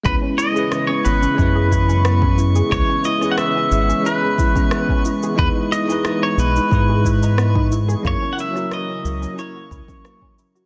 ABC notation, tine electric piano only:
X:1
M:4/4
L:1/16
Q:1/4=90
K:C#dor
V:1 name="Tine electric piano"
[G,CEB]3 [G,CEB]4- [G,CEB] [G,CEB]8 | [G,CEB]3 [G,CEB]4- [G,CEB] [G,CEB]8 | [G,DEB]3 [G,DEB]4- [G,DEB] [G,DEB]8 | [F,CEA]3 [F,CEA]4- [F,CEA] [F,CEA]8 |]